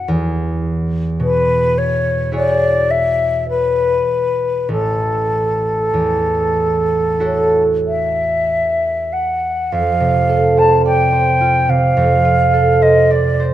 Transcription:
0.00 0.13 F#2 soft
0.00 1.74 E4 soft
0.00 1.75 F#4 soft
0.00 0.13 A4 soft
0.00 1.76 C#5 soft
0.08 3.98 E2 soft
1.20 4.74 B2 soft
1.20 1.79 B4 soft
1.77 2.33 C#5 soft
2.32 6.22 E4 soft
2.32 6.22 F#4 soft
2.32 4.74 G#4 soft
2.32 6.23 C#5 soft
2.32 2.92 D5 medium
2.90 3.48 E5 medium
3.49 4.68 B4 medium
4.69 8.59 A1 soft
4.69 7.62 A4 soft
5.93 9.77 E2 soft
7.20 9.76 E4 soft
7.20 9.76 F#4 soft
7.20 10.28 A4 soft
7.20 9.77 C#5 soft
7.87 9.14 E5 soft
9.12 9.73 F#5 soft
9.72 11.96 F2 soft
9.72 10.60 F5 medium
10.00 11.68 C3 soft
10.29 12.52 A4 soft
10.57 11.11 C5 soft
10.57 10.85 A5 medium
10.86 13.09 D5 soft
10.86 11.71 G5 soft
11.12 12.80 C5 soft
11.41 12.24 F4 soft
11.69 13.54 C3 soft
11.69 12.83 F5 medium
11.97 13.54 F2 soft
12.25 13.54 F4 soft
12.54 13.54 A4 soft
12.82 13.38 C5 soft
12.82 13.12 D#5 soft
13.11 13.54 D5 soft
13.11 13.43 D5 medium
13.40 13.54 C5 soft

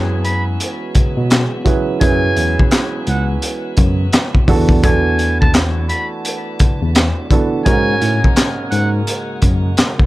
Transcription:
0.00 0.56 F#2 loud
0.00 7.62 E3 medium
0.00 1.50 F#3 medium
0.00 4.44 G#3 medium
0.00 4.44 B3 medium
0.00 1.50 C#4 medium
0.00 1.50 E4 medium
0.00 10.06 F#4 medium
0.00 1.50 G#4 medium
0.00 1.51 B4 medium
0.25 0.44 B5 medium
0.25 closed hi-hat medium
0.60 closed hi-hat medium
0.95 kick medium
0.95 closed hi-hat medium
1.17 1.45 B2 medium
1.30 snare loud
1.30 clap loud
1.30 closed hi-hat medium
1.64 1.98 F#3 medium
1.64 1.99 C#4 medium
1.64 1.99 E4 medium
1.64 1.99 G#4 medium
1.64 1.99 B4 medium
1.64 kick medium
1.64 closed hi-hat medium
2.00 2.30 F#2 loud
2.00 4.31 F#3 loud
2.00 4.32 C#4 medium
2.00 4.32 E4 medium
2.00 4.32 G#4 medium
2.00 4.32 B4 loud
2.00 2.68 G#5 loud
2.00 kick loud
2.00 closed hi-hat medium
2.37 2.54 E2 medium
2.37 closed hi-hat medium
2.59 kick medium
2.71 snare loud
2.71 clap loud
2.71 closed hi-hat medium
3.07 3.36 C#2 medium
3.07 3.27 F#5 medium
3.07 closed hi-hat medium
3.42 closed hi-hat loud
3.77 4.06 F#2 medium
3.77 kick medium
3.77 closed hi-hat medium
4.13 snare loud
4.13 clap loud
4.13 closed hi-hat medium
4.35 kick medium
4.47 5.90 E2 loud
4.47 4.81 E3 medium
4.47 7.62 A3 medium
4.47 4.81 B3 medium
4.47 7.62 D4 medium
4.47 4.81 D4 medium
4.47 4.82 F#4 medium
4.47 4.82 A4 loud
4.47 kick medium
4.47 open hi-hat medium
4.69 kick loud
4.83 7.14 E3 medium
4.83 7.14 B3 medium
4.83 7.14 D4 medium
4.83 7.14 F#4 medium
4.83 7.15 A4 loud
4.83 5.37 G#5 loud
4.83 kick loud
4.83 closed hi-hat medium
5.19 closed hi-hat medium
5.41 5.53 A5 medium
5.41 kick medium
5.54 snare loud
5.54 clap loud
5.54 closed hi-hat loud
5.89 6.09 B5 medium
5.89 closed hi-hat medium
6.25 closed hi-hat loud
6.59 kick medium
6.59 closed hi-hat medium
6.82 7.10 E2 medium
6.95 snare loud
6.95 clap medium
6.95 closed hi-hat medium
7.30 7.64 E3 medium
7.30 7.64 B3 medium
7.30 7.64 D4 medium
7.30 7.64 F#4 medium
7.30 7.65 A4 medium
7.30 kick medium
7.30 closed hi-hat medium
7.65 9.96 G#2 loud
7.65 7.94 G#2 loud
7.65 10.06 C#3 medium
7.65 9.97 G#3 medium
7.65 10.06 G#3 medium
7.65 10.06 A#3 medium
7.65 9.97 C#4 medium
7.65 9.97 F#4 medium
7.65 9.97 A#4 loud
7.65 8.32 G#5 loud
7.65 kick loud
7.65 closed hi-hat medium
8.02 8.19 A2 medium
8.02 closed hi-hat medium
8.24 kick medium
8.36 snare loud
8.36 clap loud
8.36 closed hi-hat medium
8.70 9.00 G#2 medium
8.70 8.90 F#5 medium
8.70 closed hi-hat medium
9.07 closed hi-hat loud
9.42 9.71 F#2 medium
9.42 kick medium
9.42 closed hi-hat medium
9.77 snare loud
9.77 clap medium
9.77 closed hi-hat medium
9.99 kick medium

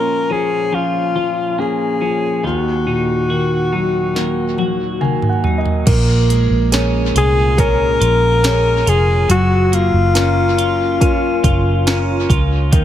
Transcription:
0.00 2.40 A#2 soft
0.00 2.44 A#2 medium
0.00 0.28 F3 soft
0.00 0.29 C#4 soft
0.00 0.71 C#4 soft
0.00 1.14 F4 soft
0.00 0.33 A#4 medium
0.30 1.14 F3 soft
0.30 2.00 C#4 soft
0.30 0.76 G#4 medium
0.72 2.44 F3 medium
0.72 1.57 C#4 soft
0.72 1.62 F4 medium
1.15 2.00 F3 soft
1.15 2.53 F4 soft
1.58 4.16 A#3 soft
1.58 2.42 C#4 soft
1.58 2.45 G#4 medium
2.01 2.43 F3 soft
2.01 2.53 C#4 soft
2.43 5.83 D#2 soft
2.43 5.87 D#3 medium
2.43 5.41 F#4 medium
2.86 4.54 A#2 soft
2.86 3.71 D#4 soft
3.30 4.14 D#3 soft
3.30 4.57 F#4 soft
3.73 4.56 F#3 soft
3.73 5.43 D#4 soft
4.15 4.99 D#3 soft
4.15 5.01 A#3 soft
4.15 snare soft
4.58 5.42 F#3 soft
4.58 5.96 F#4 soft
4.58 high tom soft
5.01 5.84 D#3 soft
5.01 6.29 A#3 soft
5.01 5.28 G#5 soft
5.01 mid tom medium
5.22 mid tom medium
5.29 5.56 F#5 soft
5.44 5.85 F#3 soft
5.44 5.96 D#4 soft
5.44 floor tom medium
5.58 5.85 D#5 soft
5.66 floor tom medium
5.86 6.47 A#1 medium
5.86 9.30 A#2 medium
5.86 9.25 A#3 medium
5.86 kick loud
5.86 closed hi-hat medium
5.86 crash medium
6.30 9.38 G#3 soft
6.30 closed hi-hat medium
6.51 7.11 A#1 medium
6.72 7.58 C#4 soft
6.72 7.55 G#4 soft
6.72 7.56 A#4 soft
6.72 7.56 C#5 soft
6.72 snare medium
6.72 closed hi-hat medium
7.15 7.97 C2 medium
7.15 8.00 F4 medium
7.15 7.56 G#4 medium
7.15 closed hi-hat medium
7.57 8.43 C#4 medium
7.57 8.41 G#4 soft
7.57 8.41 A#4 soft
7.57 8.90 A#4 loud
7.57 8.41 C#5 medium
7.57 kick medium
7.57 closed hi-hat medium
8.01 8.83 A#1 loud
8.01 8.86 F4 medium
8.01 closed hi-hat medium
8.43 10.15 C#4 medium
8.43 9.27 G#4 soft
8.43 9.27 A#4 soft
8.43 9.27 C#5 medium
8.43 snare loud
8.43 closed hi-hat medium
8.87 9.27 F1 medium
8.87 10.58 F4 medium
8.87 9.30 G#4 medium
8.87 closed hi-hat medium
9.29 9.90 F#1 loud
9.29 12.68 F#3 medium
9.29 12.72 F#3 medium
9.29 9.75 F#4 medium
9.29 closed hi-hat loud
9.72 12.84 A#3 medium
9.72 12.30 F4 medium
9.72 closed hi-hat medium
9.94 11.40 F#1 medium
10.14 10.98 C#4 soft
10.14 11.01 C#4 medium
10.14 10.98 F4 soft
10.14 10.98 A#4 medium
10.14 snare medium
10.14 closed hi-hat medium
10.58 11.43 F4 medium
10.58 closed hi-hat medium
11.00 11.84 C#4 soft
11.00 11.87 C#4 medium
11.00 11.84 F4 soft
11.00 11.84 A#4 soft
11.00 kick medium
11.00 closed hi-hat medium
11.44 12.26 F#1 medium
11.44 12.28 F4 medium
11.44 kick medium
11.44 closed hi-hat medium
11.86 12.70 C#4 soft
11.86 12.84 C#4 medium
11.86 12.70 F4 soft
11.86 12.70 A#4 medium
11.86 snare loud
11.86 closed hi-hat medium
12.29 12.69 C#2 loud
12.29 12.81 F4 medium
12.29 kick medium
12.29 closed hi-hat medium
12.72 12.84 D#2 loud
12.72 12.84 D#3 medium
12.72 kick loud
12.72 closed hi-hat medium

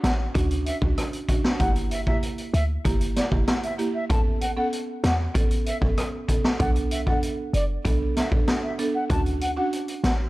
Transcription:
0.04 0.28 A1 loud
0.04 0.14 F#5 medium
0.04 snare loud
0.04 closed hi-hat medium
0.35 0.72 D2 loud
0.35 0.48 C#4 medium
0.35 0.48 D4 medium
0.35 0.48 F#4 loud
0.35 kick loud
0.35 closed hi-hat medium
0.51 closed hi-hat medium
0.66 0.76 E5 medium
0.66 closed hi-hat medium
0.82 0.94 C#2 loud
0.82 0.95 C#4 medium
0.82 0.95 D4 medium
0.82 0.95 F#4 medium
0.82 kick loud
0.98 cross-stick medium
0.98 closed hi-hat medium
1.13 closed hi-hat medium
1.29 1.41 C#4 medium
1.29 1.42 D4 medium
1.29 1.42 F#4 medium
1.29 kick medium
1.29 closed hi-hat medium
1.44 snare loud
1.60 2.09 G1 loud
1.60 1.73 A#3 medium
1.60 1.73 E4 medium
1.60 1.73 G4 loud
1.60 1.70 F#5 loud
1.60 kick loud
1.60 closed hi-hat medium
1.76 closed hi-hat medium
1.91 2.01 E5 medium
1.91 closed hi-hat medium
2.06 2.19 A#3 medium
2.06 2.20 E4 medium
2.06 2.20 G4 medium
2.06 2.17 E5 medium
2.06 kick medium
2.23 closed hi-hat medium
2.38 closed hi-hat medium
2.54 2.78 D2 loud
2.54 2.64 E5 medium
2.54 closed hi-hat medium
2.85 3.22 G1 loud
2.85 2.98 A#3 medium
2.85 2.98 E4 medium
2.85 2.98 G4 loud
2.85 kick loud
2.85 closed hi-hat medium
3.01 closed hi-hat medium
3.16 3.26 D5 medium
3.16 snare medium
3.16 closed hi-hat medium
3.31 3.44 F#1 medium
3.31 3.44 A#3 medium
3.31 3.45 E4 medium
3.31 3.45 G4 medium
3.31 kick loud
3.48 cross-stick medium
3.48 snare loud
3.48 closed hi-hat medium
3.63 3.73 E5 medium
3.63 closed hi-hat medium
3.78 3.91 A#3 medium
3.78 3.91 E4 medium
3.78 3.92 G4 medium
3.78 closed hi-hat medium
3.95 4.05 E5 medium
4.10 4.59 A1 loud
4.10 4.23 B3 medium
4.10 4.23 C#4 medium
4.10 4.23 A4 loud
4.10 4.20 A5 loud
4.10 kick loud
4.10 closed hi-hat medium
4.41 4.51 F#5 medium
4.41 closed hi-hat medium
4.57 4.69 B3 medium
4.57 4.70 C#4 medium
4.57 4.70 A4 medium
4.57 4.67 F#5 medium
4.73 closed hi-hat medium
5.04 5.28 E2 loud
5.04 5.14 F#5 medium
5.04 snare loud
5.04 closed hi-hat medium
5.34 5.72 A1 loud
5.34 5.47 B3 medium
5.34 5.48 C#4 medium
5.34 5.48 A4 loud
5.34 kick loud
5.34 closed hi-hat medium
5.51 closed hi-hat medium
5.66 5.76 E5 medium
5.66 closed hi-hat medium
5.81 5.94 G1 medium
5.81 5.94 B3 medium
5.81 5.95 C#4 medium
5.81 5.95 A4 medium
5.81 kick loud
5.98 cross-stick loud
5.98 closed hi-hat medium
6.28 6.41 B3 medium
6.28 6.41 C#4 medium
6.28 6.42 A4 medium
6.28 kick medium
6.28 closed hi-hat medium
6.44 snare loud
6.59 7.09 B1 loud
6.59 6.72 B3 loud
6.59 6.73 D4 medium
6.59 6.73 A4 loud
6.59 6.70 F#5 loud
6.59 kick loud
6.59 closed hi-hat medium
6.76 closed hi-hat soft
6.91 7.01 E5 medium
6.91 closed hi-hat medium
7.07 7.20 B3 medium
7.07 7.20 D4 medium
7.07 7.20 A4 medium
7.07 7.17 F#5 medium
7.07 kick medium
7.23 closed hi-hat medium
7.53 7.78 F#1 medium
7.53 7.64 D5 medium
7.53 closed hi-hat medium
7.85 8.22 B1 loud
7.85 7.98 B3 medium
7.85 7.98 D4 medium
7.85 7.98 A4 loud
7.85 kick medium
7.85 closed hi-hat medium
8.16 8.26 E5 medium
8.16 snare medium
8.16 closed hi-hat medium
8.32 8.44 A1 medium
8.32 8.45 B3 medium
8.32 8.45 D4 medium
8.32 8.45 A4 medium
8.32 kick loud
8.48 cross-stick medium
8.48 snare loud
8.48 closed hi-hat medium
8.63 8.73 E5 medium
8.79 8.91 B3 medium
8.79 8.92 D4 medium
8.79 8.92 A4 medium
8.79 closed hi-hat medium
8.95 9.04 F#5 medium
9.10 9.59 D2 loud
9.10 9.23 C#4 loud
9.10 9.23 D4 medium
9.10 9.23 F#4 loud
9.10 9.20 A5 loud
9.10 kick loud
9.10 closed hi-hat medium
9.26 closed hi-hat soft
9.41 9.51 F#5 medium
9.41 closed hi-hat medium
9.57 9.70 C#4 medium
9.57 9.70 D4 medium
9.57 9.70 F#4 medium
9.57 9.67 F#5 medium
9.73 closed hi-hat medium
9.88 closed hi-hat medium
10.04 10.28 A1 loud
10.04 10.14 F#5 medium
10.04 snare loud
10.04 closed hi-hat medium

